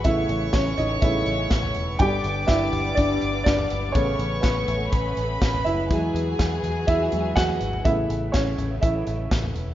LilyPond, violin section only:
\new Staff \with { instrumentName = "Violin section" } { \time 4/4 \key a \lydian \tempo 4 = 123 <cis'' cis'''>1 | <d'' d'''>1 | <cis'' cis'''>2 <b' b''>2 | <gis' gis''>1 |
r1 | }